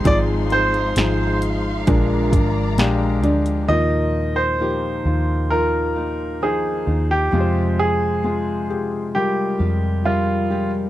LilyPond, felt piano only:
<<
  \new Staff \with { instrumentName = "Felt piano" } { \time 4/4 \key ees \major \tempo 4 = 66 <f ees' aes'>4 <f ees' aes'>4 <aes d' bes'>4 <aes d' g'>4 | <f ees' bes'>4 <f ees' g'>8 <f ees' f'>8 <f ees' f'>4 <f ees' c''>4 | <aes f' g' c''>4 <aes f' aes'>8 <f' g' aes'>8 <g f' bes'>4 <g f' bes'>4 | }
  \new Staff \with { instrumentName = "Felt piano" } { \clef bass \time 4/4 \key ees \major aes,4. r4. f''8 d''8 | bes,4. r2 r8 | c4. r2 r8 | }
>>